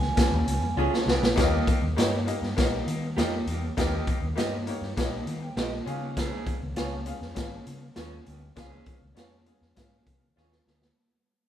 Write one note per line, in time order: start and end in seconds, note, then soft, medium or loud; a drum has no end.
0.00 1.05 G#5 loud
0.00 snare soft
0.16 0.62 G3 medium
0.16 0.61 C#4 medium
0.16 0.62 F4 medium
0.16 kick loud
0.16 snare loud
0.16 closed hi-hat loud
0.31 0.42 D#2 medium
0.47 0.58 C#2 medium
0.47 closed hi-hat medium
0.61 0.72 F2 medium
0.76 0.87 C#2 loud
0.76 1.02 F2 medium
0.76 1.22 C#4 medium
0.76 1.22 F4 medium
0.76 0.92 F4 medium
0.76 0.92 G#4 loud
0.76 1.23 G#4 loud
0.76 0.92 C#5 medium
0.94 snare medium
1.06 1.17 C2 medium
1.06 1.32 D#2 medium
1.06 snare loud
1.22 1.33 A#1 loud
1.22 snare loud
1.36 1.59 D#2 loud
1.36 1.80 D#2 loud
1.36 1.81 A#3 loud
1.36 1.81 D#4 loud
1.36 1.82 G4 loud
1.36 1.44 C#5 loud
1.36 kick loud
1.36 snare loud
1.36 closed hi-hat medium
1.44 1.85 D#5 loud
1.67 kick loud
1.67 closed hi-hat medium
1.82 1.93 D#2 medium
1.97 2.30 G2 loud
1.97 2.19 A#3 medium
1.97 2.19 D#4 medium
1.97 2.12 G4 medium
1.97 2.20 G4 medium
1.97 2.12 A#4 medium
1.97 2.20 C#5 loud
1.97 2.12 D#5 loud
1.97 snare loud
1.97 closed hi-hat loud
2.26 2.49 A#3 medium
2.26 2.49 D#4 medium
2.26 2.50 G4 medium
2.26 2.50 D#5 medium
2.26 closed hi-hat medium
2.42 2.53 G2 medium
2.42 snare soft
2.57 2.79 A#1 medium
2.57 3.02 A#3 loud
2.57 3.02 D#4 medium
2.57 3.02 G4 medium
2.57 2.64 C#5 medium
2.57 kick loud
2.57 snare loud
2.57 closed hi-hat medium
2.65 3.06 D#5 loud
2.86 3.18 D#3 medium
2.86 closed hi-hat medium
3.17 3.39 F2 medium
3.17 3.42 F2 medium
3.17 3.62 A#3 loud
3.17 3.62 D#4 medium
3.17 3.31 G4 medium
3.17 3.63 G4 medium
3.17 3.32 A#4 medium
3.17 3.32 D#5 medium
3.17 3.63 D#5 loud
3.17 snare loud
3.17 closed hi-hat medium
3.46 3.72 D#2 medium
3.46 3.68 E2 medium
3.46 closed hi-hat medium
3.77 3.99 D#2 loud
3.77 4.20 D#2 loud
3.77 4.22 A#3 loud
3.77 4.22 D#4 loud
3.77 4.22 G4 loud
3.77 4.23 D#5 loud
3.77 kick loud
3.77 snare loud
3.77 closed hi-hat loud
4.07 kick loud
4.07 closed hi-hat medium
4.21 4.32 D#2 loud
4.36 4.70 G2 medium
4.36 4.59 A#3 loud
4.36 4.59 D#4 medium
4.36 4.59 G4 medium
4.36 4.51 G4 medium
4.36 4.52 A#4 medium
4.36 4.60 D#5 loud
4.36 4.52 D#5 loud
4.36 snare loud
4.36 closed hi-hat medium
4.67 4.89 A#3 medium
4.67 4.90 D#4 medium
4.67 4.90 G4 medium
4.67 4.90 C#5 medium
4.67 closed hi-hat medium
4.81 4.92 G2 medium
4.81 snare soft
4.97 5.19 A#1 loud
4.97 5.42 A#3 loud
4.97 5.42 D#4 medium
4.97 5.42 G4 medium
4.97 5.05 C#5 medium
4.97 kick loud
4.97 snare loud
4.97 closed hi-hat medium
5.05 5.31 D#5 loud
5.26 5.48 D#3 medium
5.26 closed hi-hat medium
5.42 5.56 G5 medium
5.56 5.78 A#1 loud
5.56 5.81 F2 medium
5.56 5.71 G4 medium
5.56 5.72 A#4 medium
5.56 5.72 D#5 medium
5.56 5.71 F5 medium
5.56 snare loud
5.56 closed hi-hat medium
5.72 6.00 D#5 medium
5.86 6.11 D#2 medium
5.86 6.31 C#3 loud
5.86 6.58 C#4 loud
5.86 6.59 F4 medium
5.86 6.59 G#4 medium
5.86 6.60 F5 loud
5.86 closed hi-hat medium
6.16 6.59 G#2 loud
6.16 kick loud
6.16 snare loud
6.16 closed hi-hat loud
6.46 kick loud
6.46 closed hi-hat medium
6.62 6.73 C#2 medium
6.76 7.10 C#2 medium
6.76 6.99 C#4 medium
6.76 6.91 F4 medium
6.76 6.99 F4 medium
6.76 6.92 G#4 medium
6.76 7.00 G#4 medium
6.76 6.92 C#5 loud
6.76 7.00 F5 loud
6.76 snare loud
6.76 closed hi-hat medium
7.05 7.29 C#4 medium
7.05 7.29 F4 medium
7.05 7.29 G#4 medium
7.05 7.30 F5 medium
7.05 closed hi-hat medium
7.21 7.32 F2 medium
7.21 snare soft
7.35 7.59 G#1 medium
7.35 7.81 C#4 medium
7.35 7.81 F4 medium
7.35 7.81 G#4 medium
7.35 7.43 D#5 medium
7.35 kick loud
7.35 snare loud
7.35 closed hi-hat medium
7.43 7.85 F5 loud
7.66 7.89 C#3 loud
7.66 closed hi-hat medium
7.96 8.19 D#2 loud
7.96 8.21 F2 medium
7.96 8.41 C#4 loud
7.96 8.11 F4 medium
7.96 8.42 F4 medium
7.96 8.42 G#4 medium
7.96 8.12 G#4 medium
7.96 8.12 C#5 medium
7.96 8.42 G#5 loud
7.96 snare medium
7.96 closed hi-hat medium
8.26 8.49 D2 medium
8.26 8.51 D#2 medium
8.26 closed hi-hat medium
8.56 8.79 C#2 loud
8.56 8.99 G#2 loud
8.56 9.01 C#4 loud
8.56 9.01 F4 loud
8.56 9.02 G#4 loud
8.56 9.02 F5 loud
8.56 kick loud
8.56 snare loud
8.56 closed hi-hat medium
8.86 kick loud
8.86 closed hi-hat medium
9.02 9.13 C#2 medium
9.15 9.38 C#4 medium
9.15 9.39 F4 medium
9.15 9.31 F4 medium
9.15 9.39 G#4 medium
9.15 9.32 G#4 medium
9.15 9.39 F5 medium
9.15 snare loud
9.15 closed hi-hat medium
9.19 9.32 C#5 medium
9.46 9.69 C#4 medium
9.46 9.69 F4 medium
9.46 9.70 G#4 medium
9.46 9.70 F5 medium
9.46 closed hi-hat medium
9.61 9.73 F2 medium
9.61 snare soft
9.75 9.99 G#2 medium
9.75 10.21 C#4 medium
9.75 10.21 F4 medium
9.75 10.22 G#4 medium
9.75 9.84 E5 medium
9.75 kick loud
9.75 snare loud
9.75 closed hi-hat loud
9.84 10.25 F5 loud
10.07 10.29 C3 medium
10.07 kick loud
10.07 closed hi-hat medium
10.36 10.59 D#2 medium
10.36 10.62 F2 medium
10.36 10.81 C#4 medium
10.36 10.82 F4 medium
10.36 10.51 F4 medium
10.36 10.82 G#4 medium
10.36 10.52 G#4 medium
10.36 10.52 C#5 medium
10.36 10.82 F5 loud
10.36 snare medium
10.52 snare medium
10.66 10.89 D2 medium
10.66 10.91 G#2 medium
10.66 snare medium
10.82 snare medium